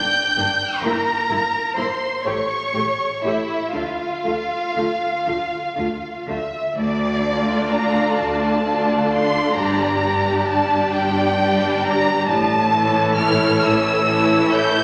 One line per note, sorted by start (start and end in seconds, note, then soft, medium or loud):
0.00 0.80 G5 medium
0.00 0.83 G6 loud
0.37 0.45 G1 medium
0.37 0.46 G2 medium
0.37 0.46 A#3 medium
0.37 0.47 D4 medium
0.82 0.91 G1 medium
0.82 0.90 G2 medium
0.82 0.92 A#3 medium
0.82 0.92 E4 medium
0.82 1.75 A#4 medium
0.82 1.76 A#5 loud
1.30 1.38 G1 medium
1.30 1.38 G2 medium
1.30 1.39 A#3 medium
1.30 1.39 E4 medium
1.75 1.86 G1 medium
1.75 1.84 G2 medium
1.75 1.85 A#3 medium
1.75 1.86 E4 medium
1.75 2.24 C5 medium
1.75 2.25 C6 medium
2.24 2.34 A1 medium
2.24 2.32 A2 medium
2.24 2.34 A3 medium
2.24 2.34 G4 medium
2.24 3.23 C#5 medium
2.24 3.24 C#6 medium
2.72 2.83 A1 medium
2.72 2.80 A2 medium
2.72 2.84 A3 medium
2.72 2.83 G4 medium
3.23 3.33 A1 medium
3.23 3.31 A2 medium
3.23 3.33 A3 medium
3.23 3.75 E4 medium
3.23 3.33 G4 medium
3.23 3.74 E5 medium
3.73 3.84 D2 medium
3.73 3.81 D3 medium
3.73 3.83 A3 medium
3.73 6.23 F4 medium
3.73 3.83 F4 medium
3.73 6.27 F5 medium
4.25 4.34 D2 medium
4.25 4.33 D3 medium
4.25 4.34 A3 soft
4.25 4.34 F4 soft
4.74 4.84 D2 soft
4.74 4.82 D3 medium
4.74 4.85 A3 soft
4.74 4.85 F4 soft
5.25 5.35 D2 medium
5.25 5.33 D3 medium
5.25 5.35 A3 soft
5.25 5.36 F4 medium
5.76 5.86 D2 medium
5.76 5.84 D3 medium
5.76 5.86 A3 medium
5.76 5.86 F4 medium
6.27 6.37 D2 medium
6.27 6.35 D3 medium
6.27 6.37 A3 soft
6.27 6.37 F4 medium
6.27 6.75 E5 medium
6.76 8.01 D2 loud
6.76 8.03 D2 medium
6.76 7.72 D5 loud
7.25 8.62 A3 medium
7.25 8.61 D4 medium
7.25 8.63 F4 medium
7.25 8.63 D5 medium
7.71 8.18 A#5 loud
8.17 9.39 D2 medium
8.17 9.40 D2 medium
8.17 9.09 A5 medium
8.65 9.54 A3 medium
8.65 9.54 D4 medium
8.65 9.55 F4 medium
8.65 9.55 D5 medium
9.10 9.56 C6 loud
9.55 10.78 G1 medium
9.55 10.76 G2 loud
9.55 10.01 G3 medium
9.55 10.01 D4 medium
9.55 10.02 G4 medium
9.55 10.02 D5 medium
9.55 10.48 A#5 loud
10.03 11.36 G3 medium
10.03 11.36 D4 medium
10.03 11.36 G4 medium
10.03 11.36 D5 medium
10.48 10.92 A5 loud
10.92 12.12 G1 medium
10.92 12.12 G2 medium
10.92 11.83 G5 loud
11.38 12.26 G3 medium
11.38 12.26 D4 medium
11.38 12.27 G4 medium
11.38 12.27 D5 medium
11.83 12.28 A#5 loud
12.27 13.46 A1 medium
12.27 13.46 A2 loud
12.27 13.15 A5 loud
12.72 14.03 E3 medium
12.72 14.04 E4 medium
12.72 14.04 A4 medium
12.72 14.04 C#5 medium
13.17 13.61 F6 loud
13.60 14.80 A1 loud
13.60 14.79 A2 loud
13.60 14.51 E6 loud
14.06 14.84 E3 medium
14.06 14.84 E4 medium
14.06 14.84 A4 medium
14.06 14.84 C#5 medium
14.53 14.84 G6 loud